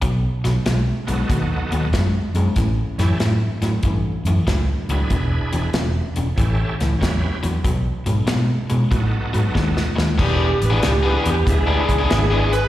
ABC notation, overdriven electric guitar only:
X:1
M:4/4
L:1/16
Q:"Swing" 1/4=94
K:Emix
V:1 name="Overdriven electric guitar" clef=bass
[B,,F,]2 [B,,F,]2 [B,,G,]2 [B,,G,]2 [B,,F,]2 [B,,F,]2 [B,,G,]2 [B,,G,]2 | [A,,E,]2 [A,,E,]2 [A,,F,]2 [A,,F,]2 [A,,E,]2 [A,,E,]2 [A,,F,]2 [A,,F,]2 | [E,,B,,]2 [E,,B,,]2 [E,,C,]2 [E,,C,]2 [A,,E,]2 [A,,E,]2 [A,,F,]2 [A,,F,]2 | [B,,F,]2 [B,,F,]2 [B,,G,]2 [B,,G,]2 [B,,F,]2 [B,,F,]2 [B,,G,]2 [B,,G,]2 |
[E,B,DG] z2 [E,B,DG] z [E,B,DG] z3 [E,B,DG] z [E,B,DG] z [E,B,DG] z2 |]